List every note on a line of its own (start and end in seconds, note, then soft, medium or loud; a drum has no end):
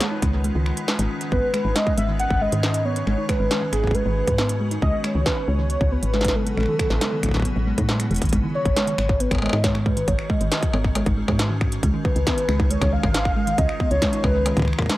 0.00 4.82 D#3 medium
0.00 4.82 G#3 medium
0.00 0.10 G#3 loud
0.00 8.33 B3 medium
0.00 5.52 C#4 medium
0.00 1.32 F4 medium
0.00 8.33 B4 medium
0.00 0.19 C#5 medium
0.00 snare loud
0.00 closed hi-hat medium
0.11 0.17 D#4 medium
0.22 0.52 C#2 medium
0.22 0.32 G#3 medium
0.22 finger snap soft
0.22 kick loud
0.22 closed hi-hat medium
0.33 0.42 G#3 medium
0.44 0.55 G#3 loud
0.44 closed hi-hat soft
0.55 0.73 C#2 medium
0.55 0.66 D#3 loud
0.66 finger snap medium
0.77 closed hi-hat medium
0.88 0.97 G#3 medium
0.88 snare loud
0.99 1.08 G#1 loud
0.99 1.09 G#3 medium
0.99 closed hi-hat medium
1.21 closed hi-hat soft
1.32 1.41 G#1 loud
1.32 1.42 B3 medium
1.32 1.52 B4 loud
1.32 kick loud
1.54 1.63 G#3 loud
1.54 1.77 B4 loud
1.54 finger snap medium
1.54 closed hi-hat medium
1.65 1.73 G#1 medium
1.65 1.70 D#4 medium
1.76 1.85 G#3 medium
1.76 1.97 D#5 loud
1.76 snare loud
1.76 closed hi-hat medium
1.87 1.96 G#3 medium
1.87 kick loud
1.98 2.27 G#1 medium
1.98 2.08 G#3 loud
1.98 2.07 E5 loud
1.98 closed hi-hat medium
2.09 2.19 D#3 loud
2.20 2.43 F#5 loud
2.20 closed hi-hat medium
2.31 2.48 G#1 medium
2.31 kick loud
2.41 2.50 G#3 loud
2.41 2.87 D#5 loud
2.52 3.03 G#2 medium
2.52 2.58 D#3 loud
2.52 closed hi-hat medium
2.63 snare loud
2.74 closed hi-hat medium
2.85 2.96 B3 medium
2.85 3.30 C#5 loud
2.90 5.52 F#4 medium
2.96 closed hi-hat medium
3.07 3.16 G#1 medium
3.07 3.16 G#3 loud
3.07 finger snap soft
3.18 3.23 D#4 medium
3.29 3.39 G#3 medium
3.29 3.72 B4 loud
3.29 finger snap medium
3.29 kick loud
3.29 closed hi-hat medium
3.40 3.49 G#1 medium
3.40 3.49 G#3 medium
3.51 3.61 G#3 loud
3.51 snare loud
3.51 closed hi-hat medium
3.62 3.72 D#3 loud
3.73 4.02 G#1 medium
3.73 3.96 G#4 medium
3.73 finger snap medium
3.73 closed hi-hat medium
3.84 kick medium
3.87 kick medium
3.91 4.04 G#3 loud
3.91 4.60 B4 medium
3.91 kick medium
3.91 closed hi-hat medium
4.06 4.23 G#1 medium
4.06 4.11 D#3 loud
4.27 4.79 G#2 medium
4.27 kick loud
4.27 closed hi-hat medium
4.38 4.49 B3 medium
4.38 snare loud
4.49 closed hi-hat medium
4.60 4.69 G#3 loud
4.71 4.77 D#4 medium
4.71 closed hi-hat soft
4.82 4.91 C#2 loud
4.82 8.33 C#3 medium
4.82 4.92 G#3 medium
4.82 5.06 D#5 loud
4.82 kick loud
4.93 8.33 F#3 medium
4.93 5.02 G#3 medium
4.98 9.03 B3 medium
5.04 5.15 G#3 loud
5.04 5.28 C#5 loud
5.04 finger snap medium
5.04 closed hi-hat medium
5.15 5.24 C#2 medium
5.15 5.25 D#3 loud
5.26 5.49 B4 loud
5.26 kick loud
5.26 snare loud
5.48 5.77 C#2 medium
5.48 5.57 G#3 loud
5.48 5.93 C#5 loud
5.59 5.64 D#3 loud
5.59 8.33 E4 medium
5.70 closed hi-hat soft
5.81 5.98 C#2 medium
5.81 kick loud
5.92 6.02 B3 medium
5.92 6.37 B4 loud
6.03 6.54 G#1 medium
6.03 closed hi-hat medium
6.14 6.23 G#3 loud
6.14 snare medium
6.21 6.30 D#4 medium
6.21 kick loud
6.21 snare medium
6.21 closed hi-hat medium
6.28 snare medium
6.35 6.45 G#3 medium
6.35 7.89 A4 loud
6.47 6.56 G#3 medium
6.47 closed hi-hat medium
6.57 6.66 A1 loud
6.57 6.68 G#3 loud
6.57 finger snap soft
6.60 finger snap soft
6.63 finger snap soft
6.66 6.79 D#3 loud
6.66 finger snap soft
6.79 finger snap medium
6.79 kick loud
6.79 closed hi-hat medium
6.90 6.99 A1 medium
6.90 snare medium
7.01 7.10 G#3 loud
7.01 snare loud
7.01 closed hi-hat medium
7.12 7.18 D#3 loud
7.23 7.52 A1 medium
7.23 finger snap medium
7.23 kick soft
7.23 closed hi-hat medium
7.26 kick medium
7.29 kick medium
7.31 kick medium
7.31 snare medium
7.34 kick medium
7.37 kick medium
7.40 kick medium
7.42 7.55 B3 medium
7.42 kick medium
7.42 closed hi-hat medium
7.56 7.73 A1 medium
7.67 7.76 G#3 loud
7.78 8.10 A2 medium
7.78 7.83 D#4 medium
7.78 kick loud
7.78 closed hi-hat medium
7.89 7.99 G#3 medium
7.89 snare loud
8.00 8.09 G#3 medium
8.00 finger snap medium
8.00 closed hi-hat loud
8.11 8.19 E1 loud
8.11 8.21 G#3 loud
8.11 closed hi-hat soft
8.14 closed hi-hat soft
8.16 closed hi-hat medium
8.18 closed hi-hat soft
8.22 8.30 A1 medium
8.22 8.32 D#3 loud
8.22 kick loud
8.22 closed hi-hat medium
8.25 closed hi-hat soft
8.29 closed hi-hat soft
8.33 8.41 G#1 loud
8.33 14.97 D#3 medium
8.33 8.43 G#3 loud
8.33 kick loud
8.33 closed hi-hat medium
8.44 8.54 D#3 loud
8.55 9.22 C#5 loud
8.65 8.74 G#1 medium
8.65 kick loud
8.65 closed hi-hat soft
8.71 14.97 G#3 medium
8.76 8.86 G#3 loud
8.76 snare loud
8.76 closed hi-hat medium
8.83 14.97 C#4 medium
8.87 8.93 D#3 loud
8.87 11.83 F#4 medium
8.87 closed hi-hat medium
8.98 9.27 G#1 medium
8.98 finger snap medium
9.09 kick loud
9.20 9.31 B3 medium
9.20 9.42 B4 loud
9.20 closed hi-hat medium
9.31 9.48 G#1 medium
9.31 finger snap medium
9.31 kick loud
9.31 closed hi-hat soft
9.31 struck metal soft
9.35 struck metal soft
9.38 9.51 G#3 loud
9.38 struck metal medium
9.42 9.66 D#5 loud
9.42 struck metal medium
9.46 struck metal medium
9.49 10.04 G#2 medium
9.49 finger snap medium
9.49 struck metal medium
9.53 9.59 D#4 medium
9.53 struck metal medium
9.64 9.74 G#3 medium
9.64 9.87 C#5 loud
9.64 kick loud
9.64 snare loud
9.64 closed hi-hat medium
9.75 9.84 G#3 medium
9.75 finger snap medium
9.86 9.96 G#3 loud
9.86 10.09 B4 loud
9.86 kick loud
9.97 10.07 D#3 loud
9.97 closed hi-hat medium
10.08 10.16 G#1 loud
10.08 10.31 C#5 loud
10.08 kick loud
10.08 closed hi-hat medium
10.19 finger snap medium
10.30 10.39 G#3 loud
10.30 11.17 D#5 loud
10.30 kick loud
10.41 10.49 G#1 medium
10.41 10.46 D#3 loud
10.41 closed hi-hat soft
10.52 snare loud
10.52 closed hi-hat medium
10.63 kick loud
10.63 closed hi-hat medium
10.73 11.03 G#1 medium
10.73 10.84 B3 medium
10.73 struck metal medium
10.84 kick loud
10.95 11.04 G#3 loud
10.95 closed hi-hat medium
10.95 struck metal medium
11.06 11.24 G#1 medium
11.06 11.12 D#4 medium
11.06 kick loud
11.06 closed hi-hat soft
11.17 11.27 G#3 medium
11.28 11.79 G#2 medium
11.28 11.37 G#3 medium
11.28 finger snap medium
11.28 kick loud
11.28 struck metal medium
11.39 11.50 G#3 loud
11.39 snare loud
11.39 closed hi-hat medium
11.50 11.61 D#3 loud
11.61 finger snap medium
11.61 kick loud
11.72 closed hi-hat medium
11.83 11.92 C#2 loud
11.83 11.92 G#3 loud
11.83 kick loud
11.83 closed hi-hat medium
11.94 11.99 D#3 loud
12.05 14.97 F4 medium
12.05 12.72 B4 loud
12.05 kick loud
12.16 12.24 C#2 medium
12.16 closed hi-hat soft
12.27 12.37 B3 medium
12.27 kick loud
12.27 snare loud
12.27 closed hi-hat medium
12.38 closed hi-hat medium
12.49 12.78 C#2 medium
12.49 12.58 G#3 loud
12.49 finger snap medium
12.60 12.65 D#4 medium
12.60 kick loud
12.71 12.80 G#3 medium
12.71 12.94 C#5 loud
12.71 closed hi-hat medium
12.81 12.99 C#2 medium
12.81 12.91 G#3 medium
12.81 finger snap medium
12.81 kick loud
12.81 closed hi-hat soft
12.81 struck metal medium
12.92 13.03 G#3 loud
12.92 13.60 F5 loud
13.03 13.54 G#1 medium
13.03 13.14 D#3 loud
13.03 finger snap soft
13.03 kick loud
13.03 struck metal medium
13.14 snare loud
13.14 closed hi-hat medium
13.25 finger snap medium
13.25 kick loud
13.36 13.45 G#3 loud
13.47 13.53 D#3 loud
13.47 closed hi-hat medium
13.58 13.67 C#2 loud
13.58 13.90 D#5 loud
13.58 kick loud
13.58 closed hi-hat medium
13.69 finger snap medium
13.80 13.90 B3 medium
13.80 kick loud
13.91 14.00 C#2 medium
13.91 14.25 C#5 loud
13.91 closed hi-hat soft
14.02 14.11 G#3 loud
14.02 kick loud
14.02 snare loud
14.02 closed hi-hat medium
14.13 14.18 D#4 medium
14.13 closed hi-hat medium
14.24 14.53 C#2 medium
14.24 14.34 G#3 medium
14.24 14.68 B4 medium
14.24 kick loud
14.24 struck metal medium
14.35 14.44 G#3 medium
14.46 14.56 G#3 loud
14.46 closed hi-hat medium
14.46 struck metal medium
14.57 14.74 C#2 medium
14.57 14.67 D#3 loud
14.57 finger snap soft
14.57 kick loud
14.57 closed hi-hat soft
14.59 finger snap soft
14.59 kick loud
14.62 kick medium
14.65 finger snap soft
14.65 kick medium
14.73 finger snap soft
14.79 finger snap medium
14.79 kick loud
14.79 struck metal medium
14.82 kick medium
14.86 14.97 G#3 medium
14.86 kick medium
14.86 snare loud
14.86 closed hi-hat medium